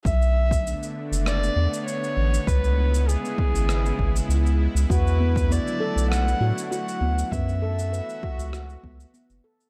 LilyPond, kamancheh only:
\new Staff \with { instrumentName = "Kamancheh" } { \time 4/4 \key b \dorian \tempo 4 = 99 e''4. r8 d''4 cis''4 | b'4 gis'2~ gis'8 r8 | b'4 d''4 fis''4 fis''4 | e''2. r4 | }